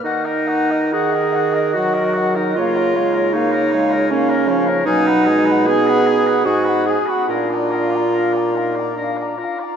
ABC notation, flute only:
X:1
M:3/4
L:1/16
Q:1/4=73
K:Ebm
V:1 name="Flute"
g e g e g e g e g e g e | f d f d f d f d f d f d | ^g ^f g f g f g f a _g a g | f b f b f b f b f b f b |]